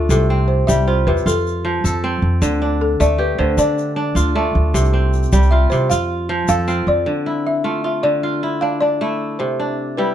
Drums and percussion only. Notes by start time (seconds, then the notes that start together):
0.10 shaker
0.69 shaker
1.17 shaker
1.28 shaker
1.47 shaker
1.85 shaker
2.42 shaker
3.01 shaker
3.58 shaker
3.78 shaker
4.17 shaker
4.75 shaker
5.13 shaker
5.23 shaker
5.32 shaker
5.43 shaker
5.71 shaker
5.91 shaker
6.48 shaker
6.68 shaker